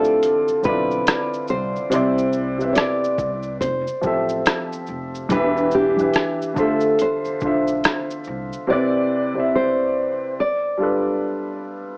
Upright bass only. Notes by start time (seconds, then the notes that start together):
Already playing: D2
0.49 muted upright bass stroke
0.66 B1
1.51 C2
1.93 C2
3.04 muted upright bass stroke
3.19 C2
3.61 F1
3.88 muted upright bass stroke
4.04 A1
4.88 F1
5.31 E1
6.41 muted upright bass stroke
6.57 D2
7.26 muted upright bass stroke
7.42 B1
8.27 C2